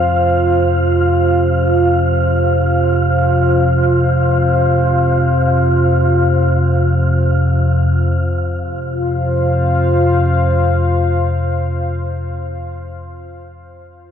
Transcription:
0.00 7.87 F2 medium
0.00 7.87 C3 medium
0.00 7.88 F4 medium
0.00 7.89 C5 medium
0.00 7.87 F5 medium
0.00 7.89 F5 medium
7.89 12.34 F2 medium
7.89 12.34 C3 medium
7.89 12.35 F4 medium
8.05 12.51 C5 medium
8.21 12.66 F5 medium

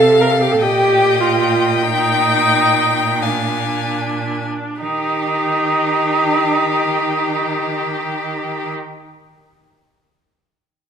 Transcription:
0.00 0.57 C3 medium
0.00 0.22 A4 medium
0.00 0.61 F5 medium
0.00 0.62 F5 medium
0.21 0.33 A#4 medium
0.31 0.42 A4 medium
0.41 0.53 G4 medium
0.52 0.63 A4 medium
0.61 4.43 A#2 medium
0.61 1.22 G4 medium
0.61 1.85 D#5 medium
0.61 3.23 G5 medium
1.20 1.84 F4 medium
1.83 3.24 D#4 medium
1.83 3.23 G5 medium
3.22 4.80 D4 medium
3.22 3.99 F5 medium
3.22 4.47 G#5 soft
4.80 8.71 D#3 soft
4.80 8.72 D#4 medium
4.80 8.72 G4 soft
4.80 8.73 G4 medium

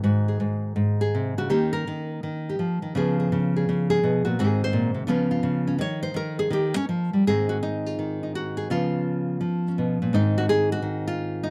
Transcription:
0.00 0.39 G#2 medium
0.00 1.48 D#3 medium
0.04 1.37 F#4 soft
0.28 1.00 G#4 soft
0.40 0.75 G#2 medium
0.76 1.49 G#2 medium
1.01 1.38 G#4 medium
1.15 1.37 C3 medium
1.38 1.51 C#3 medium
1.38 1.51 F#4 medium
1.50 1.86 D#3 medium
1.50 2.95 A#3 soft
1.50 2.95 C#4 soft
1.50 1.72 G4 medium
1.73 2.11 A#4 loud
1.87 2.22 D#3 medium
2.23 2.59 D#3 medium
2.49 2.96 G4 soft
2.59 2.82 F3 medium
2.82 2.96 D#3 medium
2.95 3.31 C#3 medium
2.95 4.37 F3 medium
2.95 4.37 B3 medium
2.95 3.19 G#4 medium
3.20 3.56 G#4 soft
3.32 3.68 C#3 medium
3.56 3.89 G#4 soft
3.69 4.03 C#3 medium
3.90 4.26 G#4 medium
4.03 4.26 B2 medium
4.25 4.39 A#2 medium
4.25 4.38 F#4 medium
4.39 5.07 G#2 medium
4.39 5.07 D#3 medium
4.39 5.08 C4 medium
4.39 5.08 F#4 medium
4.39 4.62 G#4 medium
4.64 4.98 C5 medium
4.73 4.94 A#2 medium
4.94 5.07 C3 medium
5.07 5.42 C#3 medium
5.07 5.77 F3 medium
5.07 5.77 B3 medium
5.07 5.66 C#4 medium
5.07 5.30 F4 medium
5.31 5.79 F4 medium
5.43 5.77 C#3 medium
5.67 5.78 C#4 medium
5.78 6.13 D#3 medium
5.78 6.02 C#5 medium
6.03 6.15 C5 medium
6.14 6.49 D#3 medium
6.14 6.39 A#4 loud
6.39 6.51 G#4 loud
6.50 6.74 D#3 medium
6.50 6.76 G4 medium
6.76 6.88 C#4 medium
6.89 7.13 F3 medium
7.13 7.26 G3 medium
7.27 8.70 G#2 medium
7.27 7.97 D#3 soft
7.27 8.71 C4 soft
7.27 7.49 D#4 soft
7.27 7.86 G#4 medium
7.49 7.57 F#4 medium
7.63 8.22 D#4 medium
7.86 8.57 F4 medium
7.99 8.70 D#3 medium
8.23 8.35 D#4 soft
8.35 8.71 F#4 medium
8.57 8.70 G#4 medium
8.70 9.43 C#3 medium
8.70 9.39 F3 soft
8.70 10.13 B3 soft
8.70 9.67 C#4 soft
8.70 9.79 F4 medium
9.41 10.12 F3 medium
9.68 10.14 C#4 soft
9.78 10.01 B2 medium
10.02 10.14 A#2 medium
10.13 11.50 G#2 medium
10.13 10.81 D#3 soft
10.13 11.50 C4 soft
10.13 10.72 D#4 medium
10.38 10.45 F#4 medium
10.49 10.72 G#4 loud
10.72 11.07 F#4 loud
10.82 11.50 D#3 medium
11.07 11.50 F4 medium
11.43 11.50 D#4 medium

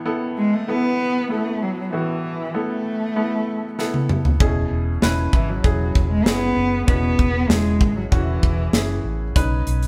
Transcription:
0.00 0.34 A2 medium
0.00 0.33 E3 medium
0.00 0.06 B3 medium
0.00 0.05 E4 medium
0.00 0.06 A4 medium
0.05 0.54 B3 medium
0.05 0.54 E4 medium
0.05 0.54 A4 medium
0.38 0.56 G#3 medium
0.54 0.71 A3 medium
0.68 1.16 B3 medium
0.68 1.31 B3 loud
0.68 1.16 E4 medium
0.68 1.16 A4 medium
1.30 1.63 A3 medium
1.30 1.78 B3 medium
1.30 1.78 E4 medium
1.30 1.79 A4 medium
1.62 1.94 F#3 medium
1.92 2.81 A2 soft
1.92 2.56 E3 medium
1.92 2.82 E3 soft
1.92 2.40 B3 medium
1.92 2.41 E4 medium
1.92 2.41 F#4 medium
2.54 4.09 A3 medium
2.54 3.02 B3 medium
2.54 3.02 E4 medium
2.54 3.03 A4 medium
3.16 3.64 B3 medium
3.16 3.64 E4 medium
3.16 3.64 A4 medium
3.79 4.27 B3 medium
3.79 4.27 E4 medium
3.79 4.27 A4 medium
3.79 snare soft
3.94 high tom medium
4.09 mid tom medium
4.25 floor tom medium
4.40 4.66 E1 medium
4.40 5.29 B2 medium
4.40 4.88 C#4 medium
4.40 4.88 E4 medium
4.40 4.88 G#4 medium
4.40 kick medium
4.71 4.96 E1 medium
5.02 5.28 E1 medium
5.02 5.50 C#4 medium
5.02 5.50 E4 medium
5.02 5.50 B4 medium
5.02 snare medium
5.33 5.58 G#1 medium
5.33 5.51 E3 medium
5.33 kick medium
5.49 6.10 F#3 medium
5.63 5.89 E1 medium
5.63 6.12 C#4 medium
5.63 6.12 E4 medium
5.63 6.12 G#4 medium
5.63 kick medium
5.95 6.21 E1 medium
5.95 kick medium
6.11 6.27 G#3 medium
6.25 6.51 F#1 medium
6.25 6.86 B3 loud
6.25 6.74 C#4 medium
6.25 6.74 E4 medium
6.25 6.74 G#4 medium
6.25 snare loud
6.57 6.82 F#1 medium
6.87 7.13 E1 medium
6.87 7.77 B2 medium
6.87 7.51 B3 medium
6.87 7.35 C#4 medium
6.87 7.36 E4 medium
6.87 7.36 F#4 medium
6.87 kick medium
7.19 7.44 E1 medium
7.19 kick medium
7.49 7.81 E1 medium
7.49 7.96 G#3 medium
7.49 7.98 C#4 medium
7.49 7.98 E4 medium
7.49 7.98 G#4 medium
7.49 snare loud
7.81 8.06 G#1 medium
7.81 kick medium
7.96 8.03 F#3 medium
8.12 8.37 E1 medium
8.12 9.01 E3 medium
8.12 8.60 C#4 medium
8.12 8.60 E4 medium
8.12 8.60 F#4 medium
8.12 kick medium
8.43 8.68 E1 medium
8.43 kick medium
8.73 8.98 F#1 medium
8.73 9.22 C#4 medium
8.73 9.22 E4 medium
8.73 9.22 G#4 medium
8.73 snare medium
9.04 9.30 A1 medium
9.36 9.61 B1 medium
9.36 9.84 C#4 medium
9.36 9.84 D#4 medium
9.36 9.84 B4 medium
9.36 kick medium
9.36 closed hi-hat medium
9.67 9.88 B1 medium
9.67 closed hi-hat soft
9.83 closed hi-hat soft

